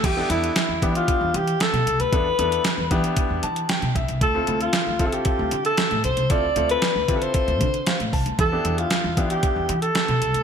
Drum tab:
CC |x---------------|----------------|----------------|----------------|
HH |x-xxx-xxx-xxxxxx|x-xxx-xxx-xxxxxx|x-xxx-xxx-xxxxxx|x-xxx-xxxxxxxxox|
SD |----o-------o---|----o-------o---|----o-------o---|----o-------o---|
BD |o-----o-o-------|o-----o-o-----o-|o-----o-o-------|o-----o-o-o---o-|

CC |----------------|
HH |x-xxx-xxx-xxxxxx|
SD |----o-------o---|
BD |o-----o-o-------|